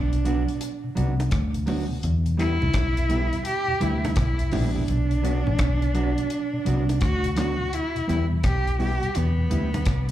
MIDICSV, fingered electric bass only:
0, 0, Header, 1, 2, 480
1, 0, Start_track
1, 0, Key_signature, 1, "minor"
1, 0, Tempo, 711744
1, 1369, Time_signature, 4, 2, 24, 8
1, 6822, End_track
2, 0, Start_track
2, 0, Title_t, "Fingered electric bass"
2, 0, Program_c, 0, 33
2, 0, Note_on_c, 0, 35, 103
2, 301, Note_off_c, 0, 35, 0
2, 660, Note_on_c, 0, 36, 99
2, 873, Note_off_c, 0, 36, 0
2, 894, Note_on_c, 0, 38, 90
2, 1345, Note_off_c, 0, 38, 0
2, 1375, Note_on_c, 0, 40, 111
2, 1741, Note_off_c, 0, 40, 0
2, 1773, Note_on_c, 0, 36, 88
2, 1845, Note_off_c, 0, 36, 0
2, 1854, Note_on_c, 0, 35, 102
2, 2220, Note_off_c, 0, 35, 0
2, 2578, Note_on_c, 0, 38, 92
2, 2791, Note_off_c, 0, 38, 0
2, 2814, Note_on_c, 0, 35, 97
2, 3029, Note_off_c, 0, 35, 0
2, 3060, Note_on_c, 0, 34, 92
2, 3273, Note_off_c, 0, 34, 0
2, 3300, Note_on_c, 0, 35, 112
2, 3663, Note_off_c, 0, 35, 0
2, 3693, Note_on_c, 0, 33, 88
2, 3765, Note_off_c, 0, 33, 0
2, 3775, Note_on_c, 0, 35, 97
2, 4141, Note_off_c, 0, 35, 0
2, 4498, Note_on_c, 0, 36, 96
2, 4711, Note_off_c, 0, 36, 0
2, 4735, Note_on_c, 0, 38, 91
2, 5185, Note_off_c, 0, 38, 0
2, 5460, Note_on_c, 0, 40, 80
2, 5673, Note_off_c, 0, 40, 0
2, 5696, Note_on_c, 0, 35, 95
2, 6062, Note_off_c, 0, 35, 0
2, 6182, Note_on_c, 0, 40, 116
2, 6394, Note_off_c, 0, 40, 0
2, 6421, Note_on_c, 0, 38, 89
2, 6557, Note_off_c, 0, 38, 0
2, 6656, Note_on_c, 0, 36, 85
2, 6822, Note_off_c, 0, 36, 0
2, 6822, End_track
0, 0, End_of_file